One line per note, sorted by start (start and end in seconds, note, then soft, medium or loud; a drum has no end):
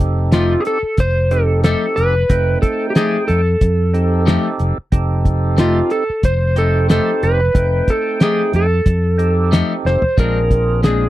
0.00 0.55 F1 medium
0.00 0.78 C4 medium
0.00 0.79 D#4 medium
0.00 0.79 G4 medium
0.00 0.79 A4 medium
0.00 kick medium
0.00 closed hi-hat medium
0.32 0.53 F3 medium
0.32 0.53 A3 medium
0.32 0.53 D#4 medium
0.32 0.60 F4 medium
0.32 0.53 G4 medium
0.32 snare loud
0.32 closed hi-hat medium
0.60 0.66 G#4 medium
0.65 1.00 A4 medium
0.65 closed hi-hat medium
0.83 muted fingered electric bass stroke soft
0.97 1.73 F1 medium
0.97 1.33 C5 medium
0.97 kick medium
0.97 closed hi-hat medium
1.31 2.15 C4 medium
1.31 2.15 D#4 medium
1.31 2.15 G4 medium
1.31 1.63 A4 medium
1.31 2.15 A4 medium
1.31 closed hi-hat medium
1.64 1.84 F3 medium
1.64 1.84 A3 medium
1.64 1.85 D#4 medium
1.64 1.85 G4 medium
1.64 1.98 A4 medium
1.64 snare medium
1.64 closed hi-hat medium
1.96 2.22 F1 medium
1.96 2.62 B4 medium
1.96 closed hi-hat medium
2.29 2.55 F1 medium
2.29 3.42 A3 medium
2.29 3.41 C4 medium
2.29 3.41 D#4 medium
2.29 3.42 G5 medium
2.29 kick medium
2.29 closed hi-hat medium
2.62 2.89 A4 medium
2.62 kick medium
2.62 closed hi-hat medium
2.90 2.96 G4 medium
2.95 3.15 F3 medium
2.95 3.16 A3 medium
2.95 3.16 D#4 medium
2.95 3.16 G4 medium
2.95 3.26 G#4 medium
2.95 snare loud
2.95 closed hi-hat medium
3.28 3.54 F2 medium
3.28 4.23 A4 medium
3.28 closed hi-hat medium
3.61 4.36 F2 loud
3.61 kick medium
3.61 closed hi-hat medium
3.93 4.78 C4 medium
3.93 4.78 D#4 medium
3.93 4.78 G4 medium
3.93 4.78 A4 medium
3.93 closed hi-hat medium
4.26 4.46 F3 medium
4.26 4.47 A3 medium
4.26 4.47 D#4 medium
4.26 4.47 G4 loud
4.26 snare loud
4.26 closed hi-hat medium
4.59 4.73 F1 medium
4.59 closed hi-hat medium
4.78 muted fingered electric bass stroke soft
4.92 5.80 F1 medium
4.92 6.04 C4 medium
4.92 6.04 D#4 medium
4.92 6.04 G4 medium
4.92 6.04 A4 medium
4.92 kick medium
4.92 closed hi-hat medium
5.25 kick medium
5.25 closed hi-hat soft
5.57 5.78 F3 medium
5.57 5.78 A3 medium
5.57 5.78 D#4 medium
5.57 5.90 F4 medium
5.57 5.78 G4 medium
5.57 snare loud
5.57 closed hi-hat medium
5.90 6.22 A4 medium
5.90 closed hi-hat medium
6.10 muted fingered electric bass stroke soft
6.23 6.99 F1 medium
6.23 6.55 C5 medium
6.23 kick medium
6.23 closed hi-hat medium
6.56 6.78 A3 soft
6.56 7.40 C4 medium
6.56 7.41 D#4 medium
6.56 6.77 D#4 soft
6.56 6.76 G4 soft
6.56 7.41 G4 medium
6.56 6.90 A4 medium
6.56 7.41 C5 medium
6.56 closed hi-hat medium
6.89 7.09 F3 medium
6.89 7.10 A3 medium
6.89 7.10 D#4 medium
6.89 7.10 G4 medium
6.89 7.24 A4 medium
6.89 snare loud
6.89 closed hi-hat medium
7.23 7.48 F1 medium
7.23 7.91 B4 medium
7.23 closed hi-hat medium
7.54 7.80 F1 medium
7.54 8.67 A3 medium
7.54 8.66 C4 medium
7.54 8.66 D#4 medium
7.54 8.67 G5 medium
7.54 kick loud
7.54 closed hi-hat medium
7.88 8.20 A4 medium
7.88 kick medium
7.88 closed hi-hat medium
8.20 8.41 F3 medium
8.20 8.41 A3 medium
8.20 8.41 D#4 medium
8.20 8.41 G4 medium
8.20 8.53 G#4 medium
8.20 snare loud
8.20 closed hi-hat medium
8.53 8.79 F2 medium
8.53 9.50 A4 medium
8.53 closed hi-hat medium
8.86 9.61 F2 medium
8.86 kick medium
8.86 closed hi-hat medium
9.18 10.03 C4 medium
9.18 10.03 D#4 medium
9.18 10.03 G4 medium
9.18 10.03 A4 medium
9.18 closed hi-hat medium
9.51 9.72 F3 medium
9.51 9.72 A3 medium
9.51 9.72 D#4 medium
9.51 9.73 G4 medium
9.51 snare loud
9.51 closed hi-hat medium
9.85 9.98 F1 medium
9.85 10.17 C5 medium
9.85 snare medium
10.02 muted fingered electric bass stroke soft
10.02 floor tom medium
10.17 11.06 A#1 medium
10.17 10.38 A#2 medium
10.17 10.38 G#3 medium
10.17 11.09 C4 medium
10.17 10.38 C4 medium
10.17 11.09 D4 medium
10.17 10.38 D4 medium
10.17 11.09 F4 medium
10.17 11.09 G#4 medium
10.17 10.84 A#4 medium
10.17 kick loud
10.17 closed hi-hat medium
10.51 kick medium
10.51 closed hi-hat medium
10.83 11.03 A#2 medium
10.83 11.04 G#3 medium
10.83 11.04 C4 medium
10.83 11.04 D4 medium
10.83 11.09 G#4 medium
10.83 snare medium
10.83 closed hi-hat medium